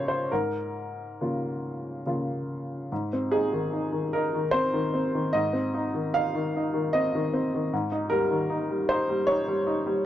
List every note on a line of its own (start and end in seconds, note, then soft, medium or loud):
0.00 0.32 C#3 soft
0.00 0.32 A#3 soft
0.00 0.32 F4 soft
0.00 0.08 C5 medium
0.00 0.33 C#5 medium
0.00 0.33 D#5 medium
0.08 0.30 C5 medium
0.31 1.18 G#2 soft
0.31 2.06 A#4 medium
1.21 2.02 C#3 soft
1.21 2.02 A#3 soft
1.21 2.02 F4 soft
2.06 2.87 C#3 soft
2.06 2.87 A#3 soft
2.06 2.87 F4 soft
2.92 5.29 G#2 soft
3.13 3.44 C4 soft
3.31 3.64 D#4 soft
3.31 4.12 G#4 medium
3.53 3.84 D#3 soft
3.73 4.04 D#4 soft
3.92 4.24 D#3 soft
4.13 4.45 D#4 soft
4.13 4.53 A#4 medium
4.34 4.65 D#3 soft
4.51 4.85 C4 soft
4.51 5.32 C5 medium
4.74 5.05 D#3 soft
4.94 5.25 C4 soft
5.15 5.46 D#3 soft
5.33 7.69 G#2 soft
5.33 6.14 D#5 medium
5.53 5.86 C4 soft
5.74 6.06 D#4 soft
5.94 6.26 D#3 soft
6.14 6.46 D#4 soft
6.14 6.94 F5 medium
6.35 6.66 D#3 soft
6.56 6.87 D#4 soft
6.74 7.06 D#3 soft
6.93 7.26 C4 soft
6.93 7.71 D#5 medium
7.15 7.46 D#3 soft
7.34 7.64 C4 soft
7.54 7.73 D#3 soft
7.73 10.02 G#2 soft
7.92 8.22 D#4 soft
8.10 8.42 G3 soft
8.10 8.88 A#4 medium
8.31 8.62 D#3 soft
8.50 8.81 D#4 soft
8.70 9.01 G3 soft
8.89 9.21 D#4 soft
8.89 9.28 C5 medium
9.09 9.40 G3 soft
9.27 9.59 D#4 soft
9.27 10.05 C#5 medium
9.48 9.79 G3 soft
9.67 9.98 D#4 soft
9.86 10.06 G3 soft